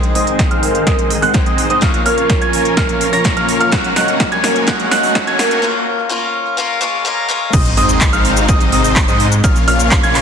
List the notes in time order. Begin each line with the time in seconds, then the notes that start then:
Already playing: G#2 D#3 G#3 C4 D#4 G#4 C5 D#5 D#6, riser
0.03 closed hi-hat
0.15 G#3 C4 D#4 C5 D#5 D#6, open hi-hat
0.27 closed hi-hat
0.39 kick, snare, closed hi-hat
0.51 G#3 C4 D#4 C5 F5 F6, closed hi-hat
0.63 A#4, open hi-hat
0.75 closed hi-hat
0.87 G#3 D#6, kick, snare, closed hi-hat
0.99 closed hi-hat
1.10 open hi-hat
1.22 G#3 C4 D#4 C5 F#5 F#6, open hi-hat
1.34 G#2 G#3 C4 D#4 G#4, kick, snare, closed hi-hat
1.46 G#3 C4 D#4 C5 D#5 D#6, closed hi-hat
1.58 open hi-hat
1.70 G#3 C4 D#4 C5 D#5 D#6, closed hi-hat
1.81 A#2 F3 A#3 C#4 F4 A#4 C#5 F5, kick, snare, closed hi-hat
1.94 closed hi-hat
2.06 A#3 C#4 F4 A#4 C#5 F5 F6, open hi-hat
2.18 closed hi-hat
2.30 kick, snare, closed hi-hat
2.41 A#3 C#4 F4 C#5 G#5 G#6, closed hi-hat
2.53 A#4, open hi-hat
2.65 closed hi-hat
2.77 A#3 C#4 F4 C#5 F5 F6, kick, snare, closed hi-hat
2.89 closed hi-hat
3.01 open hi-hat
3.13 A#3 C#4 F4 C#5 A#5 A#6, open hi-hat
3.24 A#2 A#3 C#4 F4 A#4, kick, snare, closed hi-hat
3.37 A#3 C#4 F4 C#5 F5 F6, closed hi-hat
3.49 open hi-hat
3.60 A#3 C#4 F4 C#5 F5 F6, closed hi-hat
3.71 F#3 A#3 C#4 F#4 A#4 C#5 F#5, kick, snare, closed hi-hat
3.84 closed hi-hat
3.96 A#3 C#4 F#4 C#5 D#5 F#5 F#6, snare, open hi-hat
4.08 closed hi-hat
4.20 kick, snare, closed hi-hat
4.32 A#3 C#4 F#4 C#5 G#5 G#6, closed hi-hat
4.44 A#4, snare, open hi-hat
4.56 closed hi-hat
4.67 A#3 C#4 F#4 A#4 C#5 F#5 F#6, kick, snare, closed hi-hat
4.80 closed hi-hat
4.91 A#3 C#4 F#4 C#5 D#5 F#5 F#6, snare, open hi-hat
5.03 open hi-hat
5.15 kick, snare, closed hi-hat
5.27 A#3 C#4 F#4 C#5 G#5 G#6, closed hi-hat
5.39 A#4, snare, open hi-hat
5.51 closed hi-hat
5.62 A#3 C#4 F4 A#4
6.09 A#3 C#4 F4 A#4
6.57 A#3 C#4 F4 A#4, swell
6.81 A#3 C#4 F4 A#4
7.05 A#3 C#4 F4 A#4
7.29 A#3 C#4 F4 A#4
7.53 G#1 C3 G#3 C4 D#4 C5 D#5 D#6, kick, closed hi-hat, crash, sub drop, shaker
7.65 closed hi-hat, shaker
7.77 G#1 G#3 C4 D#4 C5 D#5 D#6, open hi-hat
7.89 closed hi-hat, shaker
8.01 kick, clap, closed hi-hat, shaker
8.13 G#1 G#3 C4 D#4 C5 F5 F6, closed hi-hat, shaker
8.25 open hi-hat
8.37 closed hi-hat, shaker
8.49 G#1 G#3 C4 D#4 C5 D#5 D#6, kick, closed hi-hat, shaker
8.61 closed hi-hat, shaker
8.72 G#1 G#3 C4 D#4 C5 D#5 D#6, open hi-hat
8.84 open hi-hat, shaker
8.96 kick, clap, closed hi-hat, shaker
9.08 G#2 G#3 C4 D#4 C5 D#5 D#6, closed hi-hat, shaker
9.20 open hi-hat
9.32 closed hi-hat, shaker
9.44 A#1 C#3 A#3 C#4 F4 C#5 F5 F6, kick, closed hi-hat, shaker
9.56 closed hi-hat, shaker
9.68 A#1 A#3 C#4 F4 C#5 F5 F6, open hi-hat
9.80 closed hi-hat, shaker
9.91 kick, clap, closed hi-hat, shaker
10.03 A#1 A#3 C#4 F4 C#5 G#5 G#6, closed hi-hat, shaker
10.15 clap, open hi-hat